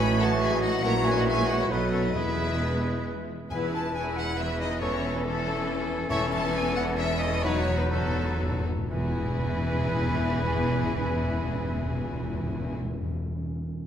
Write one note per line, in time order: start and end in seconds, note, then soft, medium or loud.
0.00 0.81 A1 loud
0.00 0.81 A2 loud
0.00 0.79 E3 loud
0.00 0.38 F#3 medium
0.00 1.66 F#3 loud
0.00 0.83 D#4 loud
0.00 0.66 E4 loud
0.00 0.79 F#4 loud
0.00 0.79 C#5 medium
0.00 0.79 C#5 loud
0.00 0.18 G#5 loud
0.00 0.19 B5 loud
0.19 0.27 A4 loud
0.19 0.40 F#5 loud
0.19 0.41 A5 loud
0.40 0.83 E3 loud
0.40 0.61 G#4 loud
0.40 0.64 E5 loud
0.40 0.62 G#5 loud
0.62 0.83 F#4 loud
0.62 0.84 D#5 loud
0.62 0.83 F#5 loud
0.83 1.69 A#1 loud
0.83 1.69 A#2 loud
0.83 1.72 E3 loud
0.83 1.26 F#3 loud
0.83 1.69 C#4 loud
0.83 1.69 E4 loud
0.83 1.72 F#4 loud
0.83 0.91 A#4 loud
0.83 1.72 C#5 medium
0.83 1.73 C#5 loud
0.83 1.06 F#5 loud
0.83 1.05 A#5 loud
1.05 1.09 G#4 loud
1.05 1.14 E5 loud
1.05 1.16 G#5 loud
1.15 1.27 F#4 loud
1.15 1.28 D#5 loud
1.15 1.27 F#5 loud
1.26 1.70 G#3 loud
1.26 1.49 G#4 loud
1.26 1.48 E5 loud
1.26 1.48 G#5 loud
1.48 1.59 F#4 loud
1.48 1.53 D#5 loud
1.48 1.60 F#5 loud
1.59 1.70 E4 loud
1.59 1.64 C#5 loud
1.59 1.71 E5 loud
1.69 2.14 B1 loud
1.69 2.15 B2 loud
1.69 2.15 F#3 medium
1.69 2.14 A3 medium
1.69 2.14 B3 medium
1.69 1.78 D#4 loud
1.69 2.15 F#4 loud
1.69 2.17 A4 loud
1.69 1.91 B4 loud
1.69 3.28 B4 medium
1.69 2.15 B4 loud
1.69 1.92 D#5 loud
1.91 2.03 C#4 medium
1.91 2.03 A4 loud
1.91 2.04 C#5 loud
2.04 2.15 D#4 medium
2.04 2.09 B4 medium
2.04 2.16 D#5 loud
2.14 3.30 E1 loud
2.14 3.30 E2 loud
2.14 2.79 E2 loud
2.14 3.26 E3 medium
2.14 3.28 G#3 medium
2.14 3.28 B3 medium
2.14 3.26 E4 loud
2.14 3.04 E4 medium
2.14 3.29 G#4 medium
2.14 3.03 B4 medium
2.14 3.26 B4 medium
2.14 3.06 E5 loud
3.50 6.06 E1 loud
3.50 6.06 E2 medium
3.50 4.13 E2 loud
3.50 3.92 E3 medium
3.50 6.06 E3 medium
3.50 3.66 B3 medium
3.50 4.78 E4 medium
3.50 3.92 E4 medium
3.50 3.66 E4 medium
3.50 3.91 G#4 medium
3.50 3.91 B4 medium
3.50 3.66 B4 medium
3.50 4.78 B4 loud
3.50 3.56 G#5 loud
3.50 3.58 G#5 loud
3.73 3.96 A5 loud
3.73 3.95 A5 loud
3.94 4.37 E3 medium
3.94 4.37 E4 medium
3.94 4.37 G#4 medium
3.94 4.37 B4 medium
3.94 4.03 G#5 loud
3.94 4.18 G#5 loud
4.16 4.39 F#5 loud
4.16 4.38 F#5 loud
4.38 4.80 E3 medium
4.38 4.46 E4 medium
4.38 4.81 G#4 medium
4.38 4.81 B4 medium
4.38 4.61 E5 loud
4.59 4.81 D#4 medium
4.59 4.81 D#5 loud
4.81 5.42 E2 loud
4.81 5.23 E3 loud
4.81 4.96 A3 loud
4.81 5.23 C#4 loud
4.81 7.40 C#4 medium
4.81 4.96 E4 loud
4.81 5.23 E4 medium
4.81 7.45 A4 loud
4.81 5.23 A4 medium
4.81 5.13 C#5 loud
4.81 4.97 C#5 medium
5.14 5.26 B4 medium
5.14 5.25 B4 loud
5.24 6.08 E3 loud
5.24 6.08 C#4 loud
5.24 6.08 E4 medium
5.24 6.08 A4 medium
5.24 5.88 A4 loud
5.24 5.87 A4 loud
6.09 8.63 E1 loud
6.09 8.63 E2 loud
6.09 6.71 E2 loud
6.09 6.96 E3 loud
6.09 7.41 E3 loud
6.09 6.25 A3 loud
6.09 6.96 C#4 loud
6.09 6.25 E4 loud
6.09 6.96 E4 loud
6.09 6.96 A4 loud
6.09 6.25 C#5 loud
6.09 6.30 E5 loud
6.09 6.16 E5 loud
6.31 6.53 A5 loud
6.31 6.38 A5 loud
6.53 6.75 G#5 loud
6.75 6.83 F#5 loud
6.75 6.97 F#5 loud
6.97 7.43 E3 medium
6.97 7.42 C#4 loud
6.97 7.43 E4 loud
6.97 7.43 A4 medium
6.97 7.22 E5 loud
6.97 7.20 E5 loud
7.19 7.43 D#5 loud
7.19 7.44 D#5 loud
7.43 7.51 E2 medium
7.43 7.90 F#3 loud
7.43 8.63 F#3 loud
7.43 7.60 F#3 loud
7.43 7.90 B3 loud
7.43 7.60 D#4 loud
7.43 7.89 D#4 loud
7.43 8.63 D#4 loud
7.43 7.89 F#4 loud
7.43 7.60 B4 medium
7.43 8.65 B4 loud
7.43 7.78 C#5 loud
7.52 7.59 E2 soft
7.60 7.67 E2 medium
7.68 7.74 E2 medium
7.75 7.83 E2 medium
7.75 7.84 B4 loud
7.80 7.91 B4 loud
7.84 7.91 E2 medium
7.90 7.99 E2 medium
7.90 8.66 F#3 loud
7.90 8.66 B3 loud
7.90 8.66 D#4 medium
7.90 8.66 F#4 medium
7.90 8.63 A4 loud
8.00 8.07 E2 medium
8.09 8.16 E2 medium
8.17 8.25 E2 medium
8.26 8.33 E2 medium
8.34 8.42 E2 medium
8.43 8.50 E2 loud
8.52 8.60 E2 loud
8.61 8.68 E2 medium
8.70 8.77 E2 loud
8.79 8.87 E2 loud
8.90 12.78 E1 loud
8.90 12.78 E2 loud
8.90 8.98 E2 loud
8.90 12.77 E3 medium
8.90 12.78 E3 medium
8.90 12.78 B3 medium
8.90 12.77 E4 medium
8.90 12.78 E4 loud
8.90 12.77 G#4 medium
8.90 12.78 G#4 loud
8.90 12.77 B4 medium
8.90 12.78 B4 medium
8.90 12.77 G#5 loud
8.98 9.05 E2 loud
9.05 9.11 E2 loud
9.11 9.18 E2 medium
9.18 9.25 E2 loud
9.25 9.32 E2 loud
9.32 9.39 E2 loud
9.39 9.46 E2 loud
9.46 9.53 E2 loud
9.53 9.60 E2 loud
9.60 9.67 E2 loud
9.68 9.74 E2 loud
9.74 9.81 E2 loud
9.81 9.88 E2 loud
9.88 9.94 E2 loud
9.94 10.01 E2 loud
10.01 10.08 E2 loud
10.08 10.15 E2 loud
10.15 10.22 E2 loud
10.22 10.28 E2 medium
10.28 10.35 E2 loud
10.35 10.42 E2 loud
10.42 10.49 E2 loud
10.49 10.56 E2 loud
10.56 10.62 E2 loud
10.62 10.69 E2 medium
10.69 10.76 E2 loud
10.76 10.83 E2 loud
10.83 10.89 E2 loud
10.89 10.96 E2 medium
10.96 11.03 E2 loud
11.03 11.10 E2 medium
11.11 11.17 E2 loud
11.17 11.24 E2 medium
11.24 11.30 E2 loud
11.30 11.37 E2 medium
11.37 11.44 E2 loud
11.44 11.50 E2 loud
11.50 11.57 E2 loud
11.57 11.64 E2 medium
11.65 11.71 E2 loud
11.71 11.78 E2 medium
11.78 11.85 E2 loud
11.85 11.92 E2 loud
11.92 11.99 E2 loud
11.99 12.06 E2 loud
12.06 12.13 E2 loud
12.14 12.20 E2 loud
12.20 12.27 E2 loud
12.27 12.34 E2 loud
12.34 12.41 E2 loud
12.41 12.47 E2 medium
12.48 12.54 E2 loud
12.54 12.60 E2 medium
12.60 12.67 E2 loud
12.67 12.74 E2 medium
12.74 12.81 E2 loud
12.81 12.88 E2 loud
12.88 12.95 E2 loud
12.95 13.02 E2 medium
13.02 13.09 E2 loud
13.09 13.16 E2 loud